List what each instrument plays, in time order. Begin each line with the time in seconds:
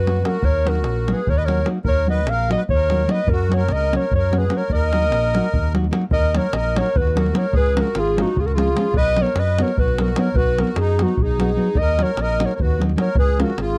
Already playing: fingered electric bass F#2, accordion F#4, clarinet B4
0.06 nylon-string guitar F#3 A#3 C#4 F#4, davul high
0.16 davul high
0.23 nylon-string guitar F#3 A#3 C#4 F#4, accordion F#4, clarinet A#4, davul high
0.35 davul high
0.42 fingered electric bass D#2, accordion A#4, clarinet C#5, davul low
0.65 nylon-string guitar F#3 A#3 D#4 F#4, accordion F#4, clarinet A#4, davul high
0.75 davul high
0.84 fingered electric bass A#1, davul high
0.96 davul high
1.07 nylon-string guitar F#3 A#3 D#4 F#4, accordion G#4, davul high
1.13 clarinet B4
1.27 fingered electric bass D#2, accordion A#4, clarinet C#5, davul low
1.36 accordion B4, clarinet D#5
1.43 nylon-string guitar F#3, accordion A#4, clarinet C#5
1.48 nylon-string guitar A#3 D#4 F#4, davul high
1.65 nylon-string guitar F#3 A#3 D#4 F#4, davul high
1.84 fingered electric bass D#2, accordion A#4, clarinet C#5, davul low
2.06 nylon-string guitar F#3 A#3 D#4 F#4, clarinet D#5
2.10 accordion B4
2.18 davul high
2.27 fingered electric bass A#1, accordion A#4, clarinet F5, davul high
2.39 davul high
2.49 nylon-string guitar F#3 A#3 D#4 F#4, clarinet D#5, davul high
2.56 accordion B4
2.69 fingered electric bass D#2, clarinet C#5, davul low
2.75 accordion A#4
2.90 nylon-string guitar F#3 A#3 D#4 F#4, davul high
3.07 nylon-string guitar F#3 A#3 D#4 F#4, clarinet D#5, davul high
3.13 accordion B4
3.27 fingered electric bass F#2, clarinet A#4, davul low
3.32 accordion F#4
3.49 nylon-string guitar F#3 A#3 C#4 F#4, davul high
3.53 accordion A#4, clarinet C#5
3.61 davul high
3.68 fingered electric bass C#2, clarinet D#5, davul high
3.74 accordion A#4
3.81 davul high
3.91 nylon-string guitar F#3 A#3 C#4 F#4, davul high
3.97 accordion A#4, clarinet C#5
4.11 fingered electric bass F#2, davul low
4.15 accordion A#4, clarinet C#5
4.31 nylon-string guitar F#3 A#3 C#4 F#4, davul high
4.38 accordion G#4, clarinet B4
4.49 nylon-string guitar F#3 A#3 C#4 F#4, davul high
4.56 accordion A#4, clarinet C#5
4.69 fingered electric bass D#2, clarinet D#5, davul low
4.74 accordion A#4
4.81 davul high
4.92 nylon-string guitar F#3 A#3 D#4 F#4, davul high
5.02 davul high
5.12 fingered electric bass A#1, davul high
5.24 davul high
5.34 nylon-string guitar F#3 A#3 D#4 F#4, davul high
5.44 davul high
5.53 fingered electric bass D#2, davul low
5.63 davul high
5.74 nylon-string guitar F#3 A#3 D#4 F#4, davul high
5.84 davul high
5.91 nylon-string guitar F#3 A#3 D#4 F#4, davul high
6.01 davul high
6.11 fingered electric bass D#2, accordion A#4, clarinet D#5, davul low
6.24 davul high
6.34 nylon-string guitar F#3 A#3 D#4 F#4, accordion A#4, clarinet C#5, davul high
6.53 fingered electric bass A#1, accordion A#4, clarinet D#5, davul high
6.65 davul high
6.75 nylon-string guitar F#3 A#3 D#4 F#4, clarinet C#5, davul high
6.79 accordion A#4
6.86 davul high
6.96 fingered electric bass D#2, accordion F#4, clarinet B4, davul low
7.07 davul high
7.15 nylon-string guitar F#3 A#3 D#4 F#4, accordion F#4, clarinet A#4, davul high
7.26 davul high
7.32 nylon-string guitar F#3 A#3 D#4 F#4, davul high
7.37 accordion A#4, clarinet C#5
7.53 fingered electric bass C#2, accordion G#4, clarinet B4, davul low
7.66 davul high
7.75 nylon-string guitar F3 G#3 C#4 F4, accordion F#4, davul high
7.80 clarinet A#4
7.87 davul high
7.95 fingered electric bass G#1, accordion F4, davul high
8.00 clarinet G#4
8.07 davul high
8.16 nylon-string guitar F3 G#3 C#4 F4, accordion D#4, davul high
8.22 clarinet F#4
8.28 davul high
8.36 fingered electric bass C#2, accordion F4, davul low
8.41 accordion F#4, clarinet G#4
8.46 clarinet A#4, davul high
8.54 nylon-string guitar F3 G#3 C#4, accordion F4, clarinet G#4
8.58 nylon-string guitar F4, davul high
8.68 davul high
8.75 nylon-string guitar F3 G#3 C#4 F4, davul high
8.93 fingered electric bass B1, accordion B4, davul low
8.98 clarinet D#5
9.05 davul high
9.16 nylon-string guitar F#3 B3 D#4 F#4, davul high
9.21 accordion A#4, clarinet C#5
9.26 davul high
9.35 fingered electric bass F#2, accordion B4, clarinet D#5, davul high
9.47 davul high
9.58 nylon-string guitar F#3 B3 D#4 F#4, davul high
9.62 accordion A#4, clarinet C#5
9.68 davul high
9.78 fingered electric bass B1, accordion F#4, clarinet B4, davul low
9.88 davul high
9.98 nylon-string guitar F#3 B3 D#4 F#4, accordion F#4, clarinet A#4, davul high
10.08 davul high
10.16 nylon-string guitar F#3 B3 D#4 F#4, accordion A#4, clarinet C#5, davul high
10.34 fingered electric bass B1, accordion F#4, clarinet B4, davul low
10.58 nylon-string guitar F#3 B3 D#4 F#4, accordion F#4, clarinet A#4, davul high
10.67 davul high
10.76 fingered electric bass F#2, accordion D#4, clarinet G#4, davul high
10.87 davul high
10.99 nylon-string guitar F#3 B3 D#4 F#4, accordion D#4, clarinet F#4, davul high
11.08 davul high
11.17 fingered electric bass B1, davul low
11.22 accordion D#4, clarinet G#4
11.38 nylon-string guitar F#3 B3 D#4 F#4, davul high
11.49 davul high
11.56 nylon-string guitar F#3 B3 D#4 F#4
11.67 davul high
11.75 fingered electric bass D#2, clarinet D#5, davul low
11.80 accordion A#4
11.88 davul high
11.98 nylon-string guitar F#3 A#3 D#4 F#4, davul high
12.02 accordion A#4, clarinet C#5
12.08 davul high
12.17 fingered electric bass A#1, davul high
12.21 accordion A#4, clarinet D#5
12.30 davul high
12.39 nylon-string guitar F#3 A#3 D#4 F#4, davul high
12.45 accordion A#4, clarinet C#5
12.51 davul high
12.55 accordion A#4, clarinet C#5
12.59 fingered electric bass D#2, accordion F#4, clarinet B4, davul low
12.71 davul high
12.79 nylon-string guitar F#3 A#3 D#4 F#4, davul high
12.89 davul high
12.96 nylon-string guitar F#3 A#3 D#4 F#4, davul high
13.00 accordion A#4, clarinet C#5
13.15 fingered electric bass C#2, accordion G#4, clarinet B4, davul low
13.28 davul high
13.38 nylon-string guitar F3 G#3 C#4 F4, davul high
13.43 accordion F#4, clarinet A#4
13.50 davul high
13.58 fingered electric bass G#1, accordion F4, clarinet G#4, davul high
13.70 davul high